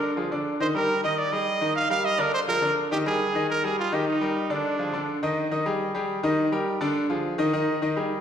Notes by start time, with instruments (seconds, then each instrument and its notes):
Already playing: grand piano D3 D4 D5, trumpet A#4
0.17 grand piano F3 F4 G#4
0.31 grand piano D3 D4 D5
0.60 grand piano D#3 D#4 D#5, trumpet C5
0.74 grand piano G3 G4 A#4, trumpet A#4
1.04 grand piano D#3 D#4 D#5, trumpet D#5
1.18 trumpet D5
1.32 grand piano G3 G4 G#4, trumpet D#5
1.61 grand piano D#3 D#4 D#5
1.76 trumpet F5
1.90 grand piano G3 G4 A#4, trumpet F5
2.05 trumpet D#5
2.18 grand piano D3 D4 D5, trumpet A#4
2.34 trumpet C5
2.48 grand piano F3 F4 G#4, trumpet A#4
2.62 grand piano D3 D4 D5
2.91 grand piano D#3 D#4 D#5, trumpet G4
3.06 grand piano G3 G4 A#4, trumpet G#4
3.35 grand piano D#3 D#4 D#5
3.50 trumpet A#4
3.64 grand piano G3 G4 G#4, trumpet G#4
3.79 trumpet F4
3.92 grand piano D#3 D#4 D#5, trumpet G4
4.08 trumpet D#4
4.21 grand piano G3 G4 A#4
4.50 grand piano D3 D4 D5, trumpet D4
4.79 grand piano F3 F4 G#4
4.93 grand piano D3 D4 D5
5.23 grand piano D#3 D#4 D#5
5.51 grand piano D#3 D#4 D#5
5.66 grand piano G3 G4 G#4
5.94 grand piano G3 G4 G#4
6.23 grand piano D#3 D#4 D#5
6.52 grand piano G3 G4 A#4
6.81 grand piano D3 D4 D5
7.10 grand piano F3 F4 G#4
7.38 grand piano D#3 D#4 D#5
7.53 grand piano D#3 D#4 D#5
7.82 grand piano D#3 D#4 D#5
7.96 grand piano G3 G4 G#4